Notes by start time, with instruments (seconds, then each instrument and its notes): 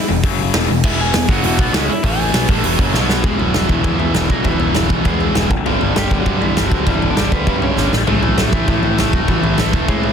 0.09 picked electric bass E1, distorted electric guitar E2 B2
0.23 picked electric bass F#1, distorted electric guitar F#2 C#3 F#3, kick, open hi-hat
0.54 picked electric bass E1, distorted electric guitar E2 B2 E3, snare, open hi-hat
0.69 picked electric bass E1, distorted electric guitar E2 B2
0.84 picked electric bass E1, distorted electric guitar E2 B2 E3, lead electric guitar E4 E5, kick, crash
1.01 lead electric guitar G#4 G#5
1.14 picked electric bass E1, distorted electric guitar E2 B2, snare, open hi-hat
1.29 picked electric bass F#1, distorted electric guitar F#2 C#3 F#3, lead electric guitar F#4 F#5, kick
1.43 picked electric bass E1, distorted electric guitar E2 B2 E3, lead electric guitar F#4 F#5, open hi-hat
1.58 picked electric bass B1, distorted electric guitar B2 F#3 B3, kick
1.73 picked electric bass C#2, distorted electric guitar C#3 G#3 C#4, snare
1.88 lead electric guitar E4 E5, muted picked electric bass stroke, muted distorted electric guitar stroke
2.03 picked electric bass A1, distorted electric guitar A2 E3 A3, lead electric guitar G#4 G#5, kick, open hi-hat
2.33 picked electric bass B1, distorted electric guitar B2 F#3 B3, snare, open hi-hat
2.49 picked electric bass A1, distorted electric guitar A2 E3 A3, kick
2.63 picked electric bass E1, distorted electric guitar E2 B2 E3, open hi-hat
2.79 picked electric bass F#1, distorted electric guitar F#2 C#3 F#3, kick
2.94 picked electric bass B1, distorted electric guitar B2 F#3 B3, snare
3.09 snare
3.23 picked electric bass E1, distorted electric guitar E2 B2 E3, lead electric guitar G#3 G#4, kick, floor tom
3.37 picked electric bass E1, lead electric guitar F#3 F#4, floor tom
3.53 picked electric bass E1, distorted electric guitar E2 B2 E3, snare, floor tom
3.67 picked electric bass E1, lead electric guitar E3 E4, kick, floor tom
3.84 distorted electric guitar E2 B2 E3, picked electric bass E2, kick, floor tom
3.99 picked electric bass E2, lead electric guitar E3 E4, floor tom
4.14 picked electric bass E1, distorted electric guitar E2 B2 E3, snare, floor tom
4.30 picked electric bass B1, lead electric guitar F#3 F#4, kick, floor tom
4.44 picked electric bass E1, distorted electric guitar E2 B2 E3, lead electric guitar E3 E4, kick, floor tom
4.60 picked electric bass E1, floor tom
4.74 picked electric bass E1, distorted electric guitar E2 B2 E3, snare, floor tom
4.90 picked electric bass B1, lead electric guitar E3 E4, kick, floor tom
5.05 distorted electric guitar E2 B2 E3, picked electric bass E2, lead electric guitar G#3 G#4, kick, floor tom
5.20 floor tom
5.35 picked electric bass E1, distorted electric guitar E2 B2 E3, snare, floor tom
5.50 picked electric bass G1, kick, floor tom
5.66 picked electric bass G1, distorted electric guitar G2 D3 G3, floor tom
5.81 picked electric bass G1, floor tom
5.96 picked electric bass G1, distorted electric guitar G2 D3 G3, lead electric guitar G3 G4, snare, floor tom
6.11 picked electric bass G1, kick, floor tom
6.18 lead electric guitar F#3 F#4
6.26 picked electric bass G2, distorted electric guitar G2 D3 G3, kick, floor tom
6.41 picked electric bass G2, lead electric guitar E3 E4, floor tom
6.56 picked electric bass G1, distorted electric guitar G2 D3 G3, lead electric guitar E3 E4, snare, floor tom
6.66 lead electric guitar F#3 F#4
6.71 picked electric bass D2, kick, floor tom
6.86 picked electric bass G1, distorted electric guitar G2 D3 G3, lead electric guitar E3 E4, kick, floor tom
7.02 picked electric bass G1, floor tom
7.10 lead electric guitar D4 D5
7.16 picked electric bass G1, distorted electric guitar G2 D3 G3, lead electric guitar D4 D5, snare, floor tom
7.32 picked electric bass D2, lead electric guitar B3 B4, kick, floor tom
7.46 picked electric bass G2, distorted electric guitar G2 D3 G3, kick, floor tom
7.62 lead electric guitar C#4 C#5, floor tom
7.77 picked electric bass G1, distorted electric guitar G2 D3 G3, snare
7.92 picked electric bass A1, snare
8.07 picked electric bass A1, distorted electric guitar A2 E3 A3, lead electric guitar G#3 G#4, floor tom
8.22 picked electric bass A1, lead electric guitar F#3 F#4, floor tom
8.37 picked electric bass A1, distorted electric guitar A2 E3 A3, lead electric guitar F#3 F#4, snare, floor tom
8.53 picked electric bass A1, lead electric guitar E3 E4, kick, floor tom
8.68 picked electric bass A2, distorted electric guitar A2 E3 A3, kick, floor tom
8.83 picked electric bass A2, lead electric guitar E3 E4, floor tom
8.98 picked electric bass A1, distorted electric guitar A2 E3 A3, snare, floor tom
9.13 picked electric bass E1, lead electric guitar F#3 F#4, kick, floor tom
9.28 picked electric bass A1, distorted electric guitar A2 E3 A3, lead electric guitar E3 E4, kick, floor tom
9.43 picked electric bass A1, floor tom
9.58 picked electric bass A1, distorted electric guitar A2 E3 A3, snare, floor tom
9.73 picked electric bass E1, lead electric guitar E3 E4, kick, floor tom
9.88 picked electric bass A2, distorted electric guitar A2 E3 A3, lead electric guitar G#3 G#4, kick, floor tom
10.03 floor tom